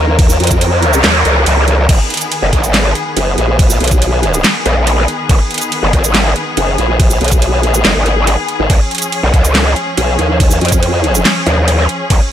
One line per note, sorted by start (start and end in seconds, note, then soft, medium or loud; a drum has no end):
0.00 0.38 D#2 loud
0.00 1.85 F3 medium
0.00 1.85 C#4 medium
0.00 1.86 A#4 medium
0.19 kick loud
0.19 closed hi-hat medium
0.19 crash medium
0.19 noise sweep medium
0.29 shaker medium
0.40 1.02 F2 loud
0.40 closed hi-hat medium
0.44 closed hi-hat medium
0.47 kick medium
0.47 closed hi-hat medium
0.47 shaker medium
0.61 closed hi-hat medium
0.61 crash soft
0.83 closed hi-hat medium
0.93 shaker medium
1.04 1.23 D#2 loud
1.04 snare loud
1.04 clap medium
1.04 closed hi-hat medium
1.04 crash medium
1.25 1.45 C#2 loud
1.25 closed hi-hat medium
1.46 1.87 C#2 loud
1.46 closed hi-hat medium
1.46 crash medium
1.68 closed hi-hat medium
1.89 1.98 G#1 loud
1.89 8.66 D#3 medium
1.89 8.66 B3 medium
1.89 12.32 G#4 medium
1.89 kick loud
1.89 closed hi-hat medium
1.89 crash medium
2.10 closed hi-hat medium
2.14 closed hi-hat medium
2.17 closed hi-hat medium
2.21 closed hi-hat soft
2.21 shaker medium
2.32 closed hi-hat medium
2.32 crash soft
2.42 2.51 F#1 loud
2.53 2.94 G#1 loud
2.53 kick medium
2.53 closed hi-hat medium
2.64 shaker medium
2.74 snare loud
2.74 clap loud
2.74 closed hi-hat medium
2.74 crash medium
2.95 closed hi-hat medium
3.17 3.36 F#1 loud
3.17 closed hi-hat medium
3.17 crash soft
3.38 3.79 A#1 loud
3.38 closed hi-hat medium
3.59 kick loud
3.59 closed hi-hat medium
3.59 crash medium
3.70 shaker medium
3.80 4.43 B1 loud
3.80 closed hi-hat medium
3.84 closed hi-hat medium
3.88 kick medium
3.88 closed hi-hat medium
3.88 shaker medium
4.02 closed hi-hat medium
4.02 crash soft
4.23 closed hi-hat medium
4.34 shaker medium
4.44 snare loud
4.44 clap loud
4.44 closed hi-hat medium
4.44 crash medium
4.66 5.07 A#1 loud
4.66 closed hi-hat medium
4.87 closed hi-hat medium
4.87 crash soft
5.08 closed hi-hat medium
5.29 5.38 G#1 loud
5.29 kick loud
5.29 closed hi-hat medium
5.29 crash medium
5.51 closed hi-hat soft
5.54 closed hi-hat medium
5.58 closed hi-hat medium
5.58 shaker medium
5.72 closed hi-hat medium
5.72 crash soft
5.83 5.92 F#1 loud
5.93 6.34 G#1 loud
5.93 kick medium
5.93 closed hi-hat medium
6.04 shaker medium
6.15 snare loud
6.15 clap loud
6.15 closed hi-hat medium
6.15 crash medium
6.36 closed hi-hat medium
6.57 6.77 F#1 loud
6.57 closed hi-hat medium
6.57 crash soft
6.78 7.19 A#1 medium
6.78 closed hi-hat medium
7.00 kick loud
7.00 closed hi-hat medium
7.00 crash medium
7.10 shaker medium
7.21 7.65 B1 loud
7.21 closed hi-hat soft
7.24 closed hi-hat medium
7.28 closed hi-hat medium
7.32 kick medium
7.32 closed hi-hat soft
7.32 shaker medium
7.42 closed hi-hat medium
7.42 crash soft
7.63 7.83 A#1 loud
7.63 closed hi-hat medium
7.74 shaker medium
7.85 7.94 F#1 medium
7.85 snare loud
7.85 clap medium
7.85 closed hi-hat medium
7.85 crash medium
7.96 8.36 G#1 medium
8.06 closed hi-hat soft
8.27 closed hi-hat medium
8.27 crash soft
8.48 closed hi-hat medium
8.59 8.68 G#1 loud
8.70 8.79 C#2 loud
8.70 12.32 F3 medium
8.70 12.32 C#4 medium
8.70 kick loud
8.70 closed hi-hat medium
8.70 crash medium
8.91 closed hi-hat soft
8.95 closed hi-hat medium
8.98 closed hi-hat medium
8.98 shaker medium
9.12 closed hi-hat medium
9.12 crash soft
9.23 9.32 B1 loud
9.34 9.75 C#2 loud
9.34 kick medium
9.34 closed hi-hat medium
9.44 shaker medium
9.55 snare loud
9.55 clap medium
9.55 closed hi-hat medium
9.55 crash medium
9.76 closed hi-hat medium
9.97 10.17 B1 loud
9.97 closed hi-hat medium
9.97 crash soft
10.19 10.60 D#2 medium
10.19 closed hi-hat medium
10.40 kick loud
10.40 closed hi-hat medium
10.40 crash medium
10.51 shaker medium
10.61 11.23 F2 medium
10.61 closed hi-hat soft
10.65 closed hi-hat medium
10.68 kick medium
10.68 closed hi-hat medium
10.68 shaker medium
10.83 closed hi-hat medium
10.83 crash medium
11.04 closed hi-hat medium
11.15 shaker medium
11.25 snare loud
11.25 clap medium
11.25 closed hi-hat medium
11.25 crash medium
11.46 11.87 D#2 loud
11.46 closed hi-hat medium
11.68 closed hi-hat medium
11.68 crash soft
11.89 closed hi-hat medium
12.10 12.19 C#2 medium
12.10 kick loud
12.10 closed hi-hat medium
12.10 crash medium